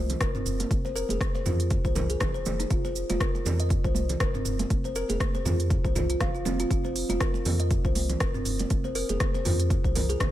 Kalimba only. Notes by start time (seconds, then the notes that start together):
0.21 A#4
0.35 C4
0.85 C5
0.96 A#4
1.10 G#4
1.35 C5
1.46 F4
1.85 C5
1.96 A#4
2.10 G#4
2.34 C5
2.59 D#4
2.70 F4
2.85 C5
3.10 F4
3.21 A#4
3.60 D#5
3.85 C5
4.21 A#4
4.35 C4
4.85 C5
4.96 A#4
5.10 G#4
5.35 C5
5.45 F4
5.85 C5
5.95 F4
6.10 F4
6.21 F5
6.35 F4
6.45 C4
6.60 F4
6.70 F4
6.85 C5
7.10 F4
7.21 A#4
7.60 D#5
7.85 C5
8.20 A#4
8.34 C4
8.85 C5
8.95 A#4
9.10 G#4
9.34 C5
9.45 F4
9.84 C5
9.96 A#4
10.09 G#4